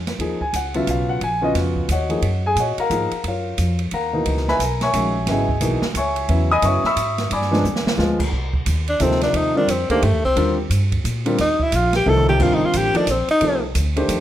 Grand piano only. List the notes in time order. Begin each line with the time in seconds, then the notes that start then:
0.20 F3 A#3 D#4 G#4
0.41 G#5
0.56 F#5
0.74 C#3 F#3 B3 F4 E5
0.90 F5
1.09 F#5
1.23 G#5
1.41 C#3 B3 F4 F#4 D#5
1.92 F#4 C#5 D#5 F#5
2.09 F3 A#3 D#4 G#4
2.46 G#4 G#5
2.59 F#4 C#5 D#5 F#5
2.80 A#4 F5 F#5 A#5
2.90 F3 A#3 D#4 G#4
3.28 F4 A#4 C#5 F5
3.94 A#4 F5 F#5 A#5
4.13 B2 E3 A#3 D#4
4.49 B4 E5 G#5 B5
4.63 A#4 A#5
4.83 C#5 E5 G#5 C#6
4.94 D#3 G#3 C#4 F#4
5.26 C#3 F#3 B3 E4 G5
5.31 G#4 D#5 E5 G#5
5.61 B2 E3 A#3 D#4
5.97 C#5 E5 G#5 C#6
6.29 C#3 F#3 B3 E4
6.51 D#5 G#5 B5 D#6
6.63 C#3 F#3 B3 E4 C#5 E5 G#5 C#6
6.86 E5 B5 C#6 E6
7.33 D5 G#5 B5 D6
7.51 F3 G#3 B3 D4
7.97 F3 G#3 B3 F4
9.00 C3 F3 A#3 D#4 A4
9.55 D3 G3 C4 F4 A#4
9.90 D#3 A3 D4 G4 C5
10.36 D3 G3 C4 F4 A#4
11.25 D3 G3 C4 F4 A#4
12.06 C3 F3 A#3 D#4 A4
12.39 D3 G3 C4 F4 A#4
12.94 F3 A#3 D#4 A4 D5
13.41 C3 F3 A#3 D#4 A4
13.96 D#3 A3 D4 G4 C5